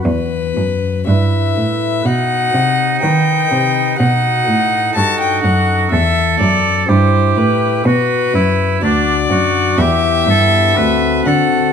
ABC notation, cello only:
X:1
M:4/4
L:1/8
Q:1/4=62
K:Em
V:1 name="Cello" clef=bass
E,, F,, G,, A,, B,, C, ^D, C, | B,, A,, G,, F,, E,, F,, G,, A,, | [K:Bphr] B,, F,, D,, F,, E,, G,, D,, D, |]